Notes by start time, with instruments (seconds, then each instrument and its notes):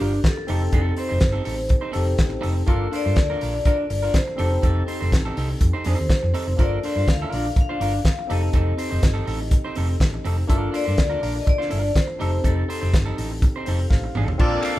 Already playing: tine electric piano A#3 D4 F4 A#4, vibraphone G4
0.00 fingered electric bass G1, clean electric guitar D4 F4 A#4
0.14 muted clean electric guitar stroke
0.24 vibraphone A4, kick, snare, closed hi-hat
0.37 muted clean electric guitar stroke
0.47 fingered electric bass F1, tine electric piano C4 D#4 G4 A4, clean electric guitar C4 D#4 A4, open hi-hat
0.63 muted clean electric guitar stroke
0.72 fingered electric bass F1, clean electric guitar C4 D#4 A4, vibraphone A4, kick, closed hi-hat
0.97 clean electric guitar C4 D#4 C5, vibraphone C5, open hi-hat
1.09 fingered electric bass F1, clean electric guitar C4 D#4 C5
1.20 muted clean electric guitar stroke, kick, snare, closed hi-hat
1.33 clean electric guitar C4 D#4 A4
1.44 fingered electric bass A1, clean electric guitar C4 D#4 A4, open hi-hat
1.57 muted clean electric guitar stroke
1.69 muted clean electric guitar stroke, kick, closed hi-hat
1.81 clean electric guitar C4 D#4 C5
1.92 fingered electric bass F1, clean electric guitar C4 D#4 A4, tine electric piano C4 D#4 G4 A4, open hi-hat
2.06 muted clean electric guitar stroke
2.18 fingered electric bass A1, kick, snare, closed hi-hat
2.30 muted clean electric guitar stroke
2.41 fingered electric bass F1, clean electric guitar C4 D#4 A4, open hi-hat
2.55 muted clean electric guitar stroke
2.66 fingered electric bass G1, tine electric piano A#3 D4 F4 A4, clean electric guitar D4 F4 A#4, kick, closed hi-hat
2.92 clean electric guitar D4 F4 C5, open hi-hat
2.96 vibraphone D5
3.05 fingered electric bass G2, clean electric guitar D4 F4 C5
3.16 fingered electric bass D2, muted clean electric guitar stroke, kick, snare, closed hi-hat
3.30 clean electric guitar D4 F4 A#4
3.41 fingered electric bass A#1, clean electric guitar D4 F4 A#4, open hi-hat
3.55 muted clean electric guitar stroke
3.65 clean electric guitar D4 F4 A#4, vibraphone D5, kick, closed hi-hat
3.78 muted clean electric guitar stroke
3.90 fingered electric bass G1, muted clean electric guitar stroke, open hi-hat
4.03 clean electric guitar D4 F4 A#4
4.14 vibraphone C5, kick, snare, closed hi-hat
4.28 muted clean electric guitar stroke
4.36 fingered electric bass F1, tine electric piano C4 D#4 G4 A4, clean electric guitar C4 D#4 A4, open hi-hat
4.51 muted clean electric guitar stroke
4.62 fingered electric bass F1, clean electric guitar C4 D#4 A4, vibraphone A4, kick, closed hi-hat
4.87 clean electric guitar C4 D#4 C5, open hi-hat
5.00 fingered electric bass F1, clean electric guitar C4 D#4 C5
5.12 fingered electric bass A1, muted clean electric guitar stroke, kick, snare, closed hi-hat
5.25 clean electric guitar C4 D#4 A4
5.37 fingered electric bass C2, clean electric guitar C4 D#4 A4, open hi-hat
5.50 muted clean electric guitar stroke
5.61 fingered electric bass F2, muted clean electric guitar stroke, kick, closed hi-hat
5.73 clean electric guitar C4 D#4 C5
5.84 fingered electric bass F2, clean electric guitar C4 D#4 A4, vibraphone C5, open hi-hat
5.99 fingered electric bass D#2, muted clean electric guitar stroke
6.10 kick, snare, closed hi-hat
6.23 fingered electric bass F2, muted clean electric guitar stroke
6.34 clean electric guitar C4 D#4 A4, open hi-hat
6.47 fingered electric bass F1, muted clean electric guitar stroke
6.56 fingered electric bass G1, tine electric piano A#3 D4 F4 A4, clean electric guitar D4 F4 A#4, kick, closed hi-hat
6.61 vibraphone D5
6.83 clean electric guitar D4 F4 C5, open hi-hat
6.96 fingered electric bass G2, clean electric guitar D4 F4 C5
7.08 fingered electric bass D2, vibraphone F5, muted clean electric guitar stroke, kick, snare, closed hi-hat
7.22 clean electric guitar D4 F4 A#4
7.32 fingered electric bass A#1, clean electric guitar D4 F4 A#4, open hi-hat
7.46 muted clean electric guitar stroke
7.56 muted clean electric guitar stroke, kick, closed hi-hat
7.61 vibraphone F5
7.69 clean electric guitar D4 F4 C5
7.80 fingered electric bass G1, clean electric guitar D4 F4 A#4, open hi-hat
7.94 muted clean electric guitar stroke
8.05 kick, snare, closed hi-hat
8.19 muted clean electric guitar stroke
8.27 fingered electric bass F1, tine electric piano C4 D#4 G4 A4, clean electric guitar C4 D#4 A4, open hi-hat
8.33 vibraphone D#5
8.43 muted clean electric guitar stroke
8.53 fingered electric bass F1, clean electric guitar C4 D#4 A4, kick, closed hi-hat
8.77 clean electric guitar C4 D#4 C5, open hi-hat
8.91 fingered electric bass F1, clean electric guitar C4 D#4 C5
9.03 fingered electric bass G1, muted clean electric guitar stroke, kick, snare, closed hi-hat
9.14 clean electric guitar C4 D#4 A4
9.26 fingered electric bass A1, clean electric guitar C4 D#4 A4, open hi-hat
9.41 muted clean electric guitar stroke
9.51 muted clean electric guitar stroke, kick, closed hi-hat
9.65 clean electric guitar C4 D#4 C5
9.75 fingered electric bass F1, clean electric guitar C4 D#4 A4, open hi-hat
9.89 muted clean electric guitar stroke
10.00 fingered electric bass A1, kick, snare, closed hi-hat
10.14 muted clean electric guitar stroke
10.25 fingered electric bass F1, clean electric guitar C4 D#4 A4, open hi-hat
10.38 muted clean electric guitar stroke
10.47 fingered electric bass G1, tine electric piano A#3 D4 F4 A4, clean electric guitar D4 F4 A#4, kick, closed hi-hat
10.72 clean electric guitar D4 F4 C5, vibraphone D5, open hi-hat
10.85 fingered electric bass G2, clean electric guitar D4 F4 C5
10.97 fingered electric bass D2, muted clean electric guitar stroke, kick, snare, closed hi-hat
11.10 clean electric guitar D4 F4 A#4
11.21 fingered electric bass A#1, clean electric guitar D4 F4 A#4, open hi-hat
11.35 muted clean electric guitar stroke
11.41 vibraphone D#5
11.46 vibraphone D5, muted clean electric guitar stroke, kick, closed hi-hat
11.58 clean electric guitar D4 F4 C5, snare
11.70 fingered electric bass G1, clean electric guitar D4 F4 A#4, open hi-hat
11.83 muted clean electric guitar stroke
11.96 vibraphone C5, kick, snare, closed hi-hat
12.07 muted clean electric guitar stroke
12.18 fingered electric bass F1, tine electric piano C4 D#4 G4 A4, clean electric guitar C4 D#4 A4, open hi-hat
12.32 muted clean electric guitar stroke
12.44 fingered electric bass F1, clean electric guitar C4 D#4 A4, vibraphone A4, kick, closed hi-hat
12.68 clean electric guitar C4 D#4 C5, open hi-hat
12.81 fingered electric bass F1, clean electric guitar C4 D#4 C5
12.94 fingered electric bass G1, muted clean electric guitar stroke, kick, snare, closed hi-hat
13.06 clean electric guitar C4 D#4 A4
13.17 fingered electric bass A1, clean electric guitar C4 D#4 A4, open hi-hat
13.32 muted clean electric guitar stroke
13.42 muted clean electric guitar stroke, kick, closed hi-hat
13.56 clean electric guitar C4 D#4 C5
13.65 fingered electric bass F1, clean electric guitar C4 D#4 A4, tine electric piano C5, open hi-hat
13.81 muted clean electric guitar stroke
13.90 fingered electric bass A1, tine electric piano F5, kick, snare
14.04 muted clean electric guitar stroke
14.15 fingered electric bass A1, clean electric guitar C4 D#4 A4, mid tom
14.28 muted clean electric guitar stroke, floor tom
14.38 fingered electric bass A#1, tonewheel organ A#3 D4 A4, violin section A#3 A4 D5, tine electric piano C4 D4 F4 A4, clean electric guitar F4 A4 D5, kick, crash
14.63 clean electric guitar F4 A4 F5, clap, open hi-hat